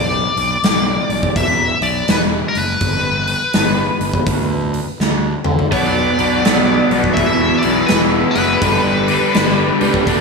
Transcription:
0.00 0.25 B1 medium
0.00 1.36 D5 medium
0.36 0.56 B1 medium
0.36 open hi-hat soft
0.63 0.97 B1 medium
0.63 snare medium
0.63 open hi-hat medium
1.09 1.29 B1 medium
1.09 open hi-hat soft
1.23 kick medium
1.36 1.70 E1 medium
1.36 1.83 E5 medium
1.36 kick loud
1.36 open hi-hat medium
1.81 2.01 B1 medium
1.81 2.10 D5 medium
1.81 open hi-hat soft
2.08 2.42 E1 medium
2.08 2.20 B4 medium
2.08 snare medium
2.08 open hi-hat medium
2.48 2.56 A#4 medium
2.55 2.74 F#1 medium
2.55 4.71 B4 medium
2.55 open hi-hat soft
2.80 3.34 G1 medium
2.80 kick medium
2.80 open hi-hat medium
3.27 open hi-hat soft
3.53 3.88 G1 medium
3.53 snare medium
3.53 open hi-hat medium
3.99 4.19 G1 medium
3.99 open hi-hat soft
4.13 kick medium
4.26 4.80 D2 medium
4.26 kick medium
4.26 open hi-hat medium
4.74 open hi-hat soft
5.00 5.33 D2 medium
5.00 snare soft
5.44 5.65 D3 medium
5.44 mid tom medium
5.59 floor tom medium
5.71 6.05 B1 medium
5.71 6.17 B2 medium
5.71 6.18 F#3 loud
5.71 6.18 B3 loud
5.71 6.11 D4 medium
5.71 6.11 F#4 medium
5.71 6.11 B4 medium
5.71 7.21 D5 medium
5.71 kick medium
5.71 open hi-hat medium
6.18 6.38 B1 medium
6.18 6.44 B2 medium
6.18 6.44 F#3 medium
6.18 6.44 B3 medium
6.18 6.41 D4 medium
6.18 6.41 F#4 medium
6.18 6.41 B4 medium
6.18 open hi-hat soft
6.45 6.78 B1 medium
6.45 6.91 B2 medium
6.45 6.91 F#3 medium
6.45 6.92 B3 medium
6.45 6.85 D4 medium
6.45 6.85 F#4 medium
6.45 6.85 B4 medium
6.45 snare medium
6.45 open hi-hat medium
6.90 7.10 B1 medium
6.90 7.16 B2 medium
6.90 7.16 F#3 medium
6.90 7.17 B3 medium
6.90 7.14 D4 loud
6.90 7.14 F#4 loud
6.90 7.15 B4 loud
6.90 open hi-hat soft
7.04 kick medium
7.13 7.51 E1 medium
7.13 7.63 E5 medium
7.13 kick loud
7.13 open hi-hat medium
7.18 7.63 E2 medium
7.18 7.64 B2 medium
7.18 7.64 E3 medium
7.18 7.57 E4 medium
7.18 7.56 G#4 medium
7.18 7.57 B4 medium
7.58 7.85 D5 medium
7.62 7.83 B1 medium
7.62 7.90 E2 medium
7.62 7.90 B2 medium
7.62 7.90 E3 medium
7.62 7.86 E4 medium
7.62 7.86 G#4 medium
7.62 7.86 B4 medium
7.62 open hi-hat soft
7.86 8.23 E1 medium
7.86 7.99 B4 medium
7.86 snare medium
7.86 open hi-hat medium
7.91 8.35 E2 medium
7.91 8.35 B2 medium
7.91 8.36 E3 loud
7.91 8.30 E4 medium
7.91 8.30 G#4 medium
7.91 8.29 B4 medium
8.31 8.57 E4 medium
8.31 8.58 G#4 medium
8.31 10.21 B4 medium
8.31 8.57 B4 medium
8.35 8.55 F#1 medium
8.35 8.61 E2 medium
8.35 8.61 B2 medium
8.35 8.61 E3 medium
8.35 open hi-hat soft
8.61 9.15 G1 medium
8.61 9.08 G2 medium
8.61 9.09 D3 medium
8.61 9.09 G3 medium
8.61 9.01 D4 medium
8.61 9.00 G4 medium
8.61 9.01 B4 medium
8.61 kick loud
8.61 open hi-hat medium
9.07 9.33 G2 medium
9.07 9.35 D3 medium
9.07 9.34 G3 medium
9.07 9.30 D4 medium
9.07 9.30 G4 medium
9.07 9.31 B4 medium
9.07 open hi-hat soft
9.34 9.69 G1 medium
9.34 9.80 G2 medium
9.34 9.80 D3 medium
9.34 9.81 G3 medium
9.34 9.73 D4 medium
9.34 9.73 G4 medium
9.34 9.73 B4 medium
9.34 snare medium
9.34 open hi-hat medium
9.81 10.00 C#2 medium
9.81 10.06 G2 medium
9.81 10.06 D3 medium
9.81 10.06 G3 loud
9.81 10.04 D4 loud
9.81 10.03 G4 medium
9.81 10.04 B4 loud
9.81 open hi-hat soft
9.94 kick medium
10.07 10.21 D2 medium
10.07 10.21 D3 medium
10.07 10.21 A3 medium
10.07 10.21 D4 medium
10.07 10.21 D4 loud
10.07 10.21 F#4 medium
10.07 10.21 A4 medium
10.07 kick loud
10.07 open hi-hat medium

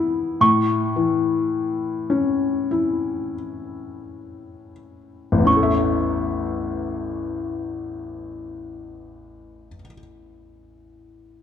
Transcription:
0.00 0.37 E3 medium
0.00 0.37 B3 soft
0.00 0.39 E4 soft
0.00 0.47 B5 medium
0.41 5.43 A2 medium
0.41 4.00 C#6 medium
0.96 3.32 E3 soft
2.10 4.70 C#4 soft
2.71 5.43 E4 soft
5.32 9.68 A1 soft
5.38 9.74 E2 soft
5.45 9.81 C#4 soft
5.45 9.83 C#6 medium
5.51 9.87 E4 soft
5.57 9.92 A4 soft
5.63 9.99 E5 medium

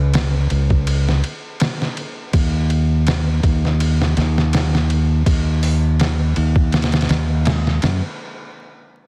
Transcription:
0.00 0.47 C#2 medium
0.14 snare loud
0.14 ride medium
0.50 1.21 C#2 medium
0.50 ride medium
0.70 kick medium
0.87 ride medium
1.09 snare soft
1.24 ride medium
1.60 snare loud
1.60 ride medium
1.82 snare soft
1.97 ride medium
2.33 3.40 D#2 medium
2.33 kick loud
2.33 ride medium
2.70 ride medium
3.07 snare loud
3.07 ride medium
3.43 4.13 D#2 medium
3.43 kick medium
3.43 ride medium
3.65 snare soft
3.80 ride medium
4.02 snare medium
4.17 5.23 D#2 medium
4.17 snare soft
4.17 ride medium
4.38 snare soft
4.53 snare loud
4.53 ride medium
4.75 snare soft
4.90 ride medium
5.26 6.33 D#2 medium
5.26 kick loud
5.26 ride medium
5.63 open hi-hat medium
6.00 snare loud
6.00 ride medium
6.36 7.06 D#2 medium
6.36 ride medium
6.56 kick medium
6.72 snare medium
6.72 ride medium
6.82 snare medium
6.82 ride medium
6.92 snare medium
6.92 ride medium
7.01 snare medium
7.01 ride medium
7.09 7.79 D#2 medium
7.09 snare medium
7.09 ride medium
7.45 snare loud
7.45 ride medium
7.67 snare soft
7.82 8.00 F#2 medium
7.82 snare medium
7.82 ride medium

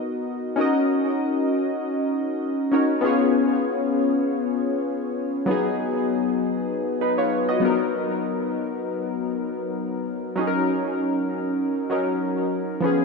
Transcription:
0.00 0.23 B3 medium
0.00 0.23 D#4 medium
0.00 0.24 F#4 medium
0.00 0.25 A#4 medium
0.00 0.25 D#5 medium
0.56 2.67 C#4 medium
0.56 2.68 D#4 medium
0.56 2.69 F#4 medium
0.56 2.69 A#4 medium
0.61 2.70 D#5 medium
2.72 3.01 C#4 medium
2.72 3.03 D#4 medium
2.72 3.03 F#4 medium
2.72 3.04 A#4 medium
2.72 3.04 C#5 medium
3.01 5.43 B3 medium
3.01 5.44 C#4 medium
3.01 5.44 F4 medium
3.01 5.45 G#4 medium
3.06 5.46 C#5 medium
5.46 7.57 F#3 medium
5.46 7.58 B3 medium
5.46 6.99 D#4 medium
5.51 7.00 G#4 medium
7.01 7.18 D#4 medium
7.01 7.17 B4 medium
7.18 7.47 F4 medium
7.18 7.47 C#5 medium
7.49 7.78 F#4 medium
7.49 7.78 D#5 medium
7.60 10.02 F#3 medium
7.60 10.03 B3 medium
7.60 7.70 D4 medium
7.65 10.05 A#4 medium
7.70 10.07 D#4 medium
10.36 11.87 F#3 medium
10.36 11.88 C#4 medium
10.36 11.89 D#4 medium
10.41 10.47 G#4 medium
10.47 11.91 A#4 medium
11.90 12.82 F#3 medium
11.90 12.83 C#4 medium
11.90 12.83 D#4 medium
11.90 12.84 A#4 medium
12.80 13.05 F3 medium
12.80 13.05 B3 medium
12.80 13.05 C#4 medium
12.85 13.05 G#4 medium

